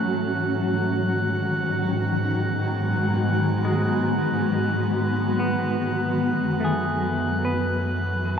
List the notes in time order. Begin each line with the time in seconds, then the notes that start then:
Already playing: F#3 C#4 F#4 A4 F#6
0.05 G#2 D#3
0.90 G#3
1.30 B3
3.65 G#3
5.39 B3
6.41 F#2 E3
6.60 A3
6.64 G#4
7.45 A3 B4
7.81 C#4